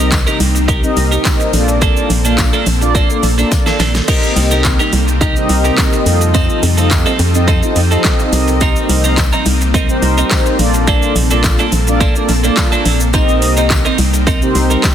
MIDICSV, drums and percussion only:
0, 0, Header, 1, 2, 480
1, 0, Start_track
1, 0, Tempo, 566038
1, 1542, Time_signature, 4, 2, 24, 8
1, 12677, End_track
2, 0, Start_track
2, 0, Title_t, "Drums"
2, 100, Note_on_c, 9, 36, 123
2, 101, Note_on_c, 9, 38, 88
2, 101, Note_on_c, 9, 54, 90
2, 102, Note_on_c, 9, 42, 84
2, 102, Note_on_c, 9, 82, 86
2, 103, Note_on_c, 9, 39, 109
2, 185, Note_off_c, 9, 36, 0
2, 185, Note_off_c, 9, 54, 0
2, 186, Note_off_c, 9, 38, 0
2, 187, Note_off_c, 9, 42, 0
2, 187, Note_off_c, 9, 82, 0
2, 188, Note_off_c, 9, 39, 0
2, 228, Note_on_c, 9, 82, 57
2, 313, Note_off_c, 9, 82, 0
2, 340, Note_on_c, 9, 46, 78
2, 340, Note_on_c, 9, 54, 57
2, 340, Note_on_c, 9, 82, 56
2, 425, Note_off_c, 9, 46, 0
2, 425, Note_off_c, 9, 54, 0
2, 425, Note_off_c, 9, 82, 0
2, 471, Note_on_c, 9, 82, 74
2, 556, Note_off_c, 9, 82, 0
2, 580, Note_on_c, 9, 36, 127
2, 585, Note_on_c, 9, 42, 81
2, 585, Note_on_c, 9, 82, 79
2, 665, Note_off_c, 9, 36, 0
2, 669, Note_off_c, 9, 42, 0
2, 669, Note_off_c, 9, 82, 0
2, 709, Note_on_c, 9, 82, 56
2, 794, Note_off_c, 9, 82, 0
2, 820, Note_on_c, 9, 46, 72
2, 820, Note_on_c, 9, 82, 53
2, 821, Note_on_c, 9, 54, 47
2, 905, Note_off_c, 9, 46, 0
2, 905, Note_off_c, 9, 82, 0
2, 906, Note_off_c, 9, 54, 0
2, 949, Note_on_c, 9, 82, 68
2, 1034, Note_off_c, 9, 82, 0
2, 1061, Note_on_c, 9, 38, 96
2, 1062, Note_on_c, 9, 36, 119
2, 1062, Note_on_c, 9, 39, 119
2, 1062, Note_on_c, 9, 54, 77
2, 1063, Note_on_c, 9, 42, 76
2, 1063, Note_on_c, 9, 82, 75
2, 1145, Note_off_c, 9, 38, 0
2, 1147, Note_off_c, 9, 36, 0
2, 1147, Note_off_c, 9, 39, 0
2, 1147, Note_off_c, 9, 54, 0
2, 1148, Note_off_c, 9, 42, 0
2, 1148, Note_off_c, 9, 82, 0
2, 1188, Note_on_c, 9, 82, 55
2, 1273, Note_off_c, 9, 82, 0
2, 1299, Note_on_c, 9, 54, 54
2, 1301, Note_on_c, 9, 46, 77
2, 1301, Note_on_c, 9, 82, 58
2, 1384, Note_off_c, 9, 54, 0
2, 1386, Note_off_c, 9, 46, 0
2, 1386, Note_off_c, 9, 82, 0
2, 1428, Note_on_c, 9, 82, 72
2, 1513, Note_off_c, 9, 82, 0
2, 1541, Note_on_c, 9, 36, 113
2, 1541, Note_on_c, 9, 42, 80
2, 1541, Note_on_c, 9, 54, 52
2, 1541, Note_on_c, 9, 82, 80
2, 1625, Note_off_c, 9, 54, 0
2, 1626, Note_off_c, 9, 36, 0
2, 1626, Note_off_c, 9, 42, 0
2, 1626, Note_off_c, 9, 82, 0
2, 1668, Note_on_c, 9, 82, 53
2, 1752, Note_off_c, 9, 82, 0
2, 1781, Note_on_c, 9, 46, 82
2, 1781, Note_on_c, 9, 82, 60
2, 1782, Note_on_c, 9, 54, 32
2, 1866, Note_off_c, 9, 46, 0
2, 1866, Note_off_c, 9, 82, 0
2, 1867, Note_off_c, 9, 54, 0
2, 1907, Note_on_c, 9, 82, 85
2, 1992, Note_off_c, 9, 82, 0
2, 2020, Note_on_c, 9, 36, 120
2, 2020, Note_on_c, 9, 38, 87
2, 2021, Note_on_c, 9, 42, 87
2, 2021, Note_on_c, 9, 54, 88
2, 2021, Note_on_c, 9, 82, 87
2, 2022, Note_on_c, 9, 39, 109
2, 2105, Note_off_c, 9, 36, 0
2, 2105, Note_off_c, 9, 38, 0
2, 2106, Note_off_c, 9, 39, 0
2, 2106, Note_off_c, 9, 42, 0
2, 2106, Note_off_c, 9, 54, 0
2, 2106, Note_off_c, 9, 82, 0
2, 2146, Note_on_c, 9, 82, 60
2, 2231, Note_off_c, 9, 82, 0
2, 2259, Note_on_c, 9, 46, 79
2, 2259, Note_on_c, 9, 82, 56
2, 2261, Note_on_c, 9, 54, 58
2, 2344, Note_off_c, 9, 46, 0
2, 2344, Note_off_c, 9, 82, 0
2, 2346, Note_off_c, 9, 54, 0
2, 2390, Note_on_c, 9, 82, 75
2, 2475, Note_off_c, 9, 82, 0
2, 2500, Note_on_c, 9, 36, 127
2, 2501, Note_on_c, 9, 54, 34
2, 2504, Note_on_c, 9, 42, 75
2, 2504, Note_on_c, 9, 82, 78
2, 2584, Note_off_c, 9, 36, 0
2, 2586, Note_off_c, 9, 54, 0
2, 2588, Note_off_c, 9, 42, 0
2, 2588, Note_off_c, 9, 82, 0
2, 2628, Note_on_c, 9, 82, 56
2, 2713, Note_off_c, 9, 82, 0
2, 2740, Note_on_c, 9, 46, 73
2, 2740, Note_on_c, 9, 82, 51
2, 2743, Note_on_c, 9, 54, 49
2, 2825, Note_off_c, 9, 46, 0
2, 2825, Note_off_c, 9, 82, 0
2, 2827, Note_off_c, 9, 54, 0
2, 2869, Note_on_c, 9, 82, 68
2, 2954, Note_off_c, 9, 82, 0
2, 2981, Note_on_c, 9, 38, 61
2, 2982, Note_on_c, 9, 36, 117
2, 2982, Note_on_c, 9, 42, 74
2, 2982, Note_on_c, 9, 54, 77
2, 2982, Note_on_c, 9, 82, 73
2, 3066, Note_off_c, 9, 38, 0
2, 3067, Note_off_c, 9, 36, 0
2, 3067, Note_off_c, 9, 42, 0
2, 3067, Note_off_c, 9, 54, 0
2, 3067, Note_off_c, 9, 82, 0
2, 3107, Note_on_c, 9, 82, 54
2, 3108, Note_on_c, 9, 38, 70
2, 3192, Note_off_c, 9, 82, 0
2, 3193, Note_off_c, 9, 38, 0
2, 3220, Note_on_c, 9, 38, 103
2, 3220, Note_on_c, 9, 54, 55
2, 3221, Note_on_c, 9, 46, 80
2, 3221, Note_on_c, 9, 82, 56
2, 3305, Note_off_c, 9, 38, 0
2, 3305, Note_off_c, 9, 46, 0
2, 3305, Note_off_c, 9, 54, 0
2, 3305, Note_off_c, 9, 82, 0
2, 3348, Note_on_c, 9, 38, 99
2, 3348, Note_on_c, 9, 82, 74
2, 3433, Note_off_c, 9, 38, 0
2, 3433, Note_off_c, 9, 82, 0
2, 3460, Note_on_c, 9, 49, 102
2, 3460, Note_on_c, 9, 54, 53
2, 3461, Note_on_c, 9, 36, 114
2, 3461, Note_on_c, 9, 42, 79
2, 3461, Note_on_c, 9, 82, 79
2, 3545, Note_off_c, 9, 49, 0
2, 3545, Note_off_c, 9, 54, 0
2, 3546, Note_off_c, 9, 36, 0
2, 3546, Note_off_c, 9, 42, 0
2, 3546, Note_off_c, 9, 82, 0
2, 3587, Note_on_c, 9, 82, 54
2, 3672, Note_off_c, 9, 82, 0
2, 3701, Note_on_c, 9, 46, 89
2, 3701, Note_on_c, 9, 54, 34
2, 3701, Note_on_c, 9, 82, 62
2, 3786, Note_off_c, 9, 46, 0
2, 3786, Note_off_c, 9, 54, 0
2, 3786, Note_off_c, 9, 82, 0
2, 3825, Note_on_c, 9, 82, 88
2, 3910, Note_off_c, 9, 82, 0
2, 3939, Note_on_c, 9, 38, 91
2, 3940, Note_on_c, 9, 36, 123
2, 3940, Note_on_c, 9, 42, 89
2, 3940, Note_on_c, 9, 82, 82
2, 3941, Note_on_c, 9, 39, 116
2, 3942, Note_on_c, 9, 54, 87
2, 4024, Note_off_c, 9, 36, 0
2, 4024, Note_off_c, 9, 38, 0
2, 4025, Note_off_c, 9, 39, 0
2, 4025, Note_off_c, 9, 42, 0
2, 4025, Note_off_c, 9, 82, 0
2, 4026, Note_off_c, 9, 54, 0
2, 4066, Note_on_c, 9, 82, 59
2, 4151, Note_off_c, 9, 82, 0
2, 4178, Note_on_c, 9, 46, 82
2, 4178, Note_on_c, 9, 82, 58
2, 4181, Note_on_c, 9, 54, 55
2, 4263, Note_off_c, 9, 46, 0
2, 4263, Note_off_c, 9, 82, 0
2, 4266, Note_off_c, 9, 54, 0
2, 4308, Note_on_c, 9, 82, 73
2, 4393, Note_off_c, 9, 82, 0
2, 4419, Note_on_c, 9, 36, 126
2, 4422, Note_on_c, 9, 42, 78
2, 4422, Note_on_c, 9, 82, 80
2, 4504, Note_off_c, 9, 36, 0
2, 4506, Note_off_c, 9, 42, 0
2, 4506, Note_off_c, 9, 82, 0
2, 4547, Note_on_c, 9, 82, 61
2, 4632, Note_off_c, 9, 82, 0
2, 4658, Note_on_c, 9, 46, 74
2, 4658, Note_on_c, 9, 82, 52
2, 4662, Note_on_c, 9, 54, 48
2, 4743, Note_off_c, 9, 46, 0
2, 4743, Note_off_c, 9, 82, 0
2, 4747, Note_off_c, 9, 54, 0
2, 4787, Note_on_c, 9, 82, 67
2, 4872, Note_off_c, 9, 82, 0
2, 4900, Note_on_c, 9, 38, 94
2, 4901, Note_on_c, 9, 39, 121
2, 4901, Note_on_c, 9, 54, 77
2, 4902, Note_on_c, 9, 36, 122
2, 4902, Note_on_c, 9, 42, 73
2, 4902, Note_on_c, 9, 82, 73
2, 4985, Note_off_c, 9, 38, 0
2, 4986, Note_off_c, 9, 39, 0
2, 4986, Note_off_c, 9, 54, 0
2, 4987, Note_off_c, 9, 36, 0
2, 4987, Note_off_c, 9, 42, 0
2, 4987, Note_off_c, 9, 82, 0
2, 5028, Note_on_c, 9, 82, 56
2, 5112, Note_off_c, 9, 82, 0
2, 5140, Note_on_c, 9, 54, 57
2, 5141, Note_on_c, 9, 46, 82
2, 5141, Note_on_c, 9, 82, 58
2, 5225, Note_off_c, 9, 54, 0
2, 5226, Note_off_c, 9, 46, 0
2, 5226, Note_off_c, 9, 82, 0
2, 5268, Note_on_c, 9, 82, 79
2, 5353, Note_off_c, 9, 82, 0
2, 5381, Note_on_c, 9, 36, 116
2, 5381, Note_on_c, 9, 42, 82
2, 5381, Note_on_c, 9, 54, 52
2, 5381, Note_on_c, 9, 82, 79
2, 5466, Note_off_c, 9, 36, 0
2, 5466, Note_off_c, 9, 42, 0
2, 5466, Note_off_c, 9, 54, 0
2, 5466, Note_off_c, 9, 82, 0
2, 5508, Note_on_c, 9, 82, 51
2, 5593, Note_off_c, 9, 82, 0
2, 5621, Note_on_c, 9, 46, 86
2, 5621, Note_on_c, 9, 82, 62
2, 5622, Note_on_c, 9, 54, 32
2, 5706, Note_off_c, 9, 46, 0
2, 5706, Note_off_c, 9, 82, 0
2, 5707, Note_off_c, 9, 54, 0
2, 5746, Note_on_c, 9, 82, 88
2, 5831, Note_off_c, 9, 82, 0
2, 5860, Note_on_c, 9, 36, 122
2, 5860, Note_on_c, 9, 38, 91
2, 5861, Note_on_c, 9, 42, 88
2, 5861, Note_on_c, 9, 82, 86
2, 5862, Note_on_c, 9, 39, 116
2, 5862, Note_on_c, 9, 54, 92
2, 5945, Note_off_c, 9, 36, 0
2, 5945, Note_off_c, 9, 38, 0
2, 5946, Note_off_c, 9, 39, 0
2, 5946, Note_off_c, 9, 42, 0
2, 5946, Note_off_c, 9, 82, 0
2, 5947, Note_off_c, 9, 54, 0
2, 5986, Note_on_c, 9, 82, 59
2, 6071, Note_off_c, 9, 82, 0
2, 6098, Note_on_c, 9, 46, 78
2, 6098, Note_on_c, 9, 82, 56
2, 6101, Note_on_c, 9, 54, 57
2, 6183, Note_off_c, 9, 46, 0
2, 6183, Note_off_c, 9, 82, 0
2, 6186, Note_off_c, 9, 54, 0
2, 6230, Note_on_c, 9, 82, 76
2, 6314, Note_off_c, 9, 82, 0
2, 6340, Note_on_c, 9, 36, 126
2, 6342, Note_on_c, 9, 54, 35
2, 6343, Note_on_c, 9, 42, 78
2, 6343, Note_on_c, 9, 82, 80
2, 6425, Note_off_c, 9, 36, 0
2, 6427, Note_off_c, 9, 54, 0
2, 6428, Note_off_c, 9, 42, 0
2, 6428, Note_off_c, 9, 82, 0
2, 6468, Note_on_c, 9, 82, 61
2, 6553, Note_off_c, 9, 82, 0
2, 6579, Note_on_c, 9, 46, 73
2, 6579, Note_on_c, 9, 82, 53
2, 6583, Note_on_c, 9, 54, 47
2, 6664, Note_off_c, 9, 46, 0
2, 6664, Note_off_c, 9, 82, 0
2, 6667, Note_off_c, 9, 54, 0
2, 6709, Note_on_c, 9, 82, 64
2, 6794, Note_off_c, 9, 82, 0
2, 6820, Note_on_c, 9, 38, 98
2, 6822, Note_on_c, 9, 39, 121
2, 6822, Note_on_c, 9, 42, 73
2, 6822, Note_on_c, 9, 82, 73
2, 6823, Note_on_c, 9, 36, 117
2, 6823, Note_on_c, 9, 54, 76
2, 6905, Note_off_c, 9, 38, 0
2, 6907, Note_off_c, 9, 39, 0
2, 6907, Note_off_c, 9, 42, 0
2, 6907, Note_off_c, 9, 82, 0
2, 6908, Note_off_c, 9, 36, 0
2, 6908, Note_off_c, 9, 54, 0
2, 6948, Note_on_c, 9, 82, 58
2, 7033, Note_off_c, 9, 82, 0
2, 7061, Note_on_c, 9, 46, 80
2, 7061, Note_on_c, 9, 82, 58
2, 7062, Note_on_c, 9, 54, 58
2, 7146, Note_off_c, 9, 46, 0
2, 7146, Note_off_c, 9, 82, 0
2, 7147, Note_off_c, 9, 54, 0
2, 7188, Note_on_c, 9, 82, 73
2, 7272, Note_off_c, 9, 82, 0
2, 7301, Note_on_c, 9, 42, 82
2, 7301, Note_on_c, 9, 82, 83
2, 7302, Note_on_c, 9, 36, 114
2, 7304, Note_on_c, 9, 54, 55
2, 7386, Note_off_c, 9, 36, 0
2, 7386, Note_off_c, 9, 42, 0
2, 7386, Note_off_c, 9, 82, 0
2, 7389, Note_off_c, 9, 54, 0
2, 7427, Note_on_c, 9, 82, 53
2, 7512, Note_off_c, 9, 82, 0
2, 7543, Note_on_c, 9, 46, 89
2, 7543, Note_on_c, 9, 82, 64
2, 7545, Note_on_c, 9, 54, 32
2, 7627, Note_off_c, 9, 46, 0
2, 7627, Note_off_c, 9, 82, 0
2, 7630, Note_off_c, 9, 54, 0
2, 7668, Note_on_c, 9, 82, 86
2, 7752, Note_off_c, 9, 82, 0
2, 7781, Note_on_c, 9, 36, 118
2, 7781, Note_on_c, 9, 38, 90
2, 7782, Note_on_c, 9, 42, 90
2, 7782, Note_on_c, 9, 82, 86
2, 7783, Note_on_c, 9, 39, 107
2, 7786, Note_on_c, 9, 54, 92
2, 7866, Note_off_c, 9, 36, 0
2, 7866, Note_off_c, 9, 38, 0
2, 7867, Note_off_c, 9, 42, 0
2, 7867, Note_off_c, 9, 82, 0
2, 7868, Note_off_c, 9, 39, 0
2, 7870, Note_off_c, 9, 54, 0
2, 7908, Note_on_c, 9, 82, 58
2, 7993, Note_off_c, 9, 82, 0
2, 8020, Note_on_c, 9, 46, 78
2, 8020, Note_on_c, 9, 82, 56
2, 8025, Note_on_c, 9, 54, 57
2, 8105, Note_off_c, 9, 46, 0
2, 8105, Note_off_c, 9, 82, 0
2, 8109, Note_off_c, 9, 54, 0
2, 8151, Note_on_c, 9, 82, 76
2, 8236, Note_off_c, 9, 82, 0
2, 8261, Note_on_c, 9, 36, 124
2, 8264, Note_on_c, 9, 42, 78
2, 8264, Note_on_c, 9, 82, 83
2, 8346, Note_off_c, 9, 36, 0
2, 8349, Note_off_c, 9, 42, 0
2, 8349, Note_off_c, 9, 82, 0
2, 8389, Note_on_c, 9, 82, 58
2, 8474, Note_off_c, 9, 82, 0
2, 8500, Note_on_c, 9, 46, 71
2, 8500, Note_on_c, 9, 82, 53
2, 8504, Note_on_c, 9, 54, 46
2, 8585, Note_off_c, 9, 46, 0
2, 8585, Note_off_c, 9, 82, 0
2, 8589, Note_off_c, 9, 54, 0
2, 8629, Note_on_c, 9, 82, 69
2, 8714, Note_off_c, 9, 82, 0
2, 8741, Note_on_c, 9, 38, 101
2, 8743, Note_on_c, 9, 36, 116
2, 8743, Note_on_c, 9, 39, 123
2, 8743, Note_on_c, 9, 42, 75
2, 8743, Note_on_c, 9, 82, 72
2, 8744, Note_on_c, 9, 54, 78
2, 8826, Note_off_c, 9, 38, 0
2, 8828, Note_off_c, 9, 36, 0
2, 8828, Note_off_c, 9, 39, 0
2, 8828, Note_off_c, 9, 42, 0
2, 8828, Note_off_c, 9, 82, 0
2, 8829, Note_off_c, 9, 54, 0
2, 8869, Note_on_c, 9, 82, 58
2, 8954, Note_off_c, 9, 82, 0
2, 8981, Note_on_c, 9, 54, 59
2, 8982, Note_on_c, 9, 46, 82
2, 8982, Note_on_c, 9, 82, 56
2, 9066, Note_off_c, 9, 54, 0
2, 9067, Note_off_c, 9, 46, 0
2, 9067, Note_off_c, 9, 82, 0
2, 9108, Note_on_c, 9, 82, 79
2, 9193, Note_off_c, 9, 82, 0
2, 9221, Note_on_c, 9, 54, 53
2, 9222, Note_on_c, 9, 36, 109
2, 9222, Note_on_c, 9, 42, 84
2, 9222, Note_on_c, 9, 82, 79
2, 9306, Note_off_c, 9, 54, 0
2, 9307, Note_off_c, 9, 36, 0
2, 9307, Note_off_c, 9, 42, 0
2, 9307, Note_off_c, 9, 82, 0
2, 9348, Note_on_c, 9, 82, 54
2, 9433, Note_off_c, 9, 82, 0
2, 9462, Note_on_c, 9, 46, 86
2, 9462, Note_on_c, 9, 82, 65
2, 9547, Note_off_c, 9, 46, 0
2, 9547, Note_off_c, 9, 82, 0
2, 9587, Note_on_c, 9, 82, 86
2, 9672, Note_off_c, 9, 82, 0
2, 9701, Note_on_c, 9, 36, 121
2, 9701, Note_on_c, 9, 38, 88
2, 9702, Note_on_c, 9, 42, 84
2, 9702, Note_on_c, 9, 82, 86
2, 9703, Note_on_c, 9, 39, 112
2, 9703, Note_on_c, 9, 54, 87
2, 9786, Note_off_c, 9, 36, 0
2, 9786, Note_off_c, 9, 38, 0
2, 9787, Note_off_c, 9, 39, 0
2, 9787, Note_off_c, 9, 42, 0
2, 9787, Note_off_c, 9, 54, 0
2, 9787, Note_off_c, 9, 82, 0
2, 9828, Note_on_c, 9, 82, 59
2, 9912, Note_off_c, 9, 82, 0
2, 9939, Note_on_c, 9, 46, 78
2, 9939, Note_on_c, 9, 82, 59
2, 9943, Note_on_c, 9, 54, 54
2, 10024, Note_off_c, 9, 46, 0
2, 10024, Note_off_c, 9, 82, 0
2, 10027, Note_off_c, 9, 54, 0
2, 10070, Note_on_c, 9, 82, 72
2, 10154, Note_off_c, 9, 82, 0
2, 10180, Note_on_c, 9, 36, 126
2, 10182, Note_on_c, 9, 54, 34
2, 10183, Note_on_c, 9, 42, 78
2, 10183, Note_on_c, 9, 82, 77
2, 10265, Note_off_c, 9, 36, 0
2, 10267, Note_off_c, 9, 54, 0
2, 10268, Note_off_c, 9, 42, 0
2, 10268, Note_off_c, 9, 82, 0
2, 10308, Note_on_c, 9, 82, 58
2, 10393, Note_off_c, 9, 82, 0
2, 10419, Note_on_c, 9, 46, 74
2, 10419, Note_on_c, 9, 82, 51
2, 10424, Note_on_c, 9, 54, 48
2, 10504, Note_off_c, 9, 46, 0
2, 10504, Note_off_c, 9, 82, 0
2, 10508, Note_off_c, 9, 54, 0
2, 10549, Note_on_c, 9, 82, 65
2, 10633, Note_off_c, 9, 82, 0
2, 10660, Note_on_c, 9, 38, 99
2, 10661, Note_on_c, 9, 39, 126
2, 10662, Note_on_c, 9, 36, 114
2, 10662, Note_on_c, 9, 42, 72
2, 10662, Note_on_c, 9, 54, 81
2, 10662, Note_on_c, 9, 82, 75
2, 10744, Note_off_c, 9, 38, 0
2, 10746, Note_off_c, 9, 39, 0
2, 10747, Note_off_c, 9, 36, 0
2, 10747, Note_off_c, 9, 42, 0
2, 10747, Note_off_c, 9, 54, 0
2, 10747, Note_off_c, 9, 82, 0
2, 10787, Note_on_c, 9, 82, 58
2, 10872, Note_off_c, 9, 82, 0
2, 10901, Note_on_c, 9, 46, 81
2, 10901, Note_on_c, 9, 54, 56
2, 10901, Note_on_c, 9, 82, 56
2, 10985, Note_off_c, 9, 46, 0
2, 10985, Note_off_c, 9, 82, 0
2, 10986, Note_off_c, 9, 54, 0
2, 11026, Note_on_c, 9, 82, 78
2, 11111, Note_off_c, 9, 82, 0
2, 11140, Note_on_c, 9, 42, 81
2, 11140, Note_on_c, 9, 82, 84
2, 11141, Note_on_c, 9, 36, 118
2, 11143, Note_on_c, 9, 54, 55
2, 11225, Note_off_c, 9, 42, 0
2, 11225, Note_off_c, 9, 82, 0
2, 11226, Note_off_c, 9, 36, 0
2, 11227, Note_off_c, 9, 54, 0
2, 11267, Note_on_c, 9, 82, 51
2, 11351, Note_off_c, 9, 82, 0
2, 11381, Note_on_c, 9, 46, 88
2, 11381, Note_on_c, 9, 82, 62
2, 11466, Note_off_c, 9, 46, 0
2, 11466, Note_off_c, 9, 82, 0
2, 11506, Note_on_c, 9, 82, 87
2, 11591, Note_off_c, 9, 82, 0
2, 11620, Note_on_c, 9, 36, 125
2, 11620, Note_on_c, 9, 38, 95
2, 11621, Note_on_c, 9, 42, 86
2, 11621, Note_on_c, 9, 82, 85
2, 11622, Note_on_c, 9, 39, 112
2, 11622, Note_on_c, 9, 54, 91
2, 11705, Note_off_c, 9, 36, 0
2, 11705, Note_off_c, 9, 38, 0
2, 11706, Note_off_c, 9, 39, 0
2, 11706, Note_off_c, 9, 42, 0
2, 11706, Note_off_c, 9, 82, 0
2, 11707, Note_off_c, 9, 54, 0
2, 11746, Note_on_c, 9, 82, 59
2, 11831, Note_off_c, 9, 82, 0
2, 11858, Note_on_c, 9, 46, 77
2, 11858, Note_on_c, 9, 82, 57
2, 11862, Note_on_c, 9, 54, 58
2, 11942, Note_off_c, 9, 46, 0
2, 11942, Note_off_c, 9, 82, 0
2, 11947, Note_off_c, 9, 54, 0
2, 11988, Note_on_c, 9, 82, 80
2, 12073, Note_off_c, 9, 82, 0
2, 12100, Note_on_c, 9, 36, 127
2, 12102, Note_on_c, 9, 42, 83
2, 12102, Note_on_c, 9, 82, 80
2, 12103, Note_on_c, 9, 54, 35
2, 12184, Note_off_c, 9, 36, 0
2, 12187, Note_off_c, 9, 42, 0
2, 12187, Note_off_c, 9, 82, 0
2, 12188, Note_off_c, 9, 54, 0
2, 12228, Note_on_c, 9, 82, 59
2, 12313, Note_off_c, 9, 82, 0
2, 12339, Note_on_c, 9, 46, 71
2, 12339, Note_on_c, 9, 82, 53
2, 12343, Note_on_c, 9, 54, 49
2, 12424, Note_off_c, 9, 46, 0
2, 12424, Note_off_c, 9, 82, 0
2, 12428, Note_off_c, 9, 54, 0
2, 12469, Note_on_c, 9, 82, 68
2, 12554, Note_off_c, 9, 82, 0
2, 12580, Note_on_c, 9, 38, 98
2, 12582, Note_on_c, 9, 39, 117
2, 12583, Note_on_c, 9, 36, 121
2, 12583, Note_on_c, 9, 42, 70
2, 12583, Note_on_c, 9, 54, 77
2, 12583, Note_on_c, 9, 82, 77
2, 12665, Note_off_c, 9, 38, 0
2, 12667, Note_off_c, 9, 36, 0
2, 12667, Note_off_c, 9, 39, 0
2, 12667, Note_off_c, 9, 42, 0
2, 12667, Note_off_c, 9, 82, 0
2, 12668, Note_off_c, 9, 54, 0
2, 12677, End_track
0, 0, End_of_file